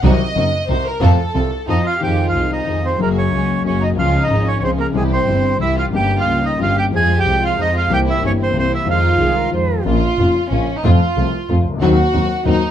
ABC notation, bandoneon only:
X:1
M:3/4
L:1/16
Q:1/4=184
K:Fphr
V:1 name="Bandoneon"
z12 | z8 e2 f2 | [K:Fm] g3 f3 e4 c2 | B2 d6 d2 e2 |
f3 e3 d3/2 d/2 c2 B2 | A2 c6 =e2 f2 | g3 f3 e2 f2 g2 | a3 g3 f2 e2 f2 |
g2 =e2 d2 c2 c2 e2 | f8 z4 | [K:Bbm] z12 | z12 |
z12 |]